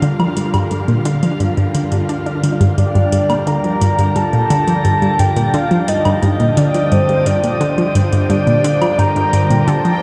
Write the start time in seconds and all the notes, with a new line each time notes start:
Already playing: D3 G3 F4 A#4 F5
0.02 D3, closed hi-hat
0.19 F3, closed hi-hat, low woodblock
0.37 G2, closed hi-hat
0.54 G2, closed hi-hat, low woodblock
0.71 G2, closed hi-hat
0.88 A#2, closed hi-hat
1.05 D3, closed hi-hat
1.23 F3, closed hi-hat
1.40 G2, closed hi-hat
1.57 G2, closed hi-hat
1.75 D3, closed hi-hat
1.92 G2, closed hi-hat
2.09 D4, closed hi-hat
2.26 D4, closed hi-hat
2.44 D3, closed hi-hat
2.61 G2, closed hi-hat
2.78 G2 D5 G5, closed hi-hat
2.95 G2, closed hi-hat
3.12 G2, closed hi-hat
3.30 A#2, closed hi-hat, low woodblock
3.47 D3 A#5, closed hi-hat
3.64 F3, closed hi-hat
3.81 G2, closed hi-hat
3.99 G2, closed hi-hat
4.16 G2 A5, closed hi-hat
4.33 A#2, closed hi-hat
4.50 D3, closed hi-hat
4.68 F3, closed hi-hat
4.85 G2, closed hi-hat
5.02 G2, closed hi-hat
5.19 G2 C5 G5, closed hi-hat
5.36 A#2, closed hi-hat
5.54 D3 F5, closed hi-hat
5.71 F3, closed hi-hat
5.88 G2 D#5, closed hi-hat
6.05 G2, closed hi-hat, low woodblock
6.23 G2, closed hi-hat
6.40 A#2, closed hi-hat
6.57 D3 D5, closed hi-hat
6.74 F3, closed hi-hat
6.92 G2 C5, closed hi-hat
7.09 G2, closed hi-hat
7.26 G2 D5, closed hi-hat
7.43 A#2, closed hi-hat
7.61 D3, closed hi-hat
7.78 F3, closed hi-hat
7.95 G2, closed hi-hat
8.12 G2, closed hi-hat
8.30 G2 D5, closed hi-hat
8.47 A#2, closed hi-hat
8.64 D3, closed hi-hat
8.81 F3, closed hi-hat, low woodblock
8.98 G2 A#5, closed hi-hat
9.16 G2, closed hi-hat
9.33 G2, closed hi-hat
9.50 A#2, closed hi-hat
9.67 D3 A5, closed hi-hat
9.85 F3, closed hi-hat